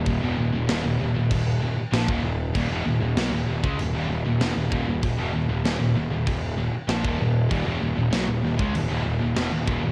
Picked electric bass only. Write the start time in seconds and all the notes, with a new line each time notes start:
0.06 D#1
0.22 E1
0.38 D#1
0.53 D#1
0.68 D#1
0.84 D#1
0.99 D#1
1.14 D#1
1.31 D#1
1.62 D#1
1.77 muted picked electric bass stroke
1.92 A#1
2.08 D#1
2.24 D#1
2.55 D#1
2.70 E1
2.86 D#1
3.01 D#1
3.16 B1
3.31 D#1
3.47 D#1
3.64 C#2
3.78 D#1
3.93 D#1
4.09 D#1
4.25 D#1
4.41 E1
4.56 D#1
4.72 D#1
4.87 D#1
5.03 D#1
5.18 E1
5.34 D#1
5.49 D#1
5.64 D#1
5.79 D#1
5.95 D#1
6.11 D#1
6.27 D#1
6.57 D#1
6.73 muted picked electric bass stroke
6.88 A#1
7.04 D#1
7.20 D#1
7.51 D#1
7.66 E1
7.81 D#1
7.97 D#1
8.12 B1
8.27 D#1
8.43 D#1
8.59 C#2
8.75 D#1
8.90 D#1
9.05 D#1
9.21 D#1
9.36 E1
9.52 D#1
9.67 D#1
9.83 D#1